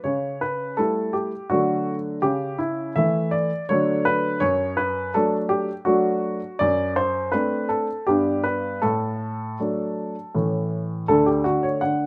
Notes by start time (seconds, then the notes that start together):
0.04 C#3 C#5
0.41 B4
0.77 G3 A3 E4 A4
1.13 G4
1.50 D3 F#3 A3 D4 F#4
2.22 C#3 G4
2.58 E4
2.96 E3 A3 E4 E5
3.31 D5
3.69 D3 F#3 A3 D4 C#5
4.05 B4
4.40 F#2 C#5
4.77 B4
5.14 F#3 A3 D4 A4
5.49 G4
5.85 F#3 A3 D4 F#4
6.59 F#2 D5
6.96 C5
7.32 A3 C4 D4 B4
7.69 A4
8.07 G2 G3 B3 D4 G4
8.44 B4
8.82 A2 A4
9.60 F#3 A3 D4
10.35 A2 E3 A3 C#4
11.08 D2 D3 A3 D4 A4
11.26 G4
11.44 D3 F#4
11.63 C#5
11.81 D3 F#5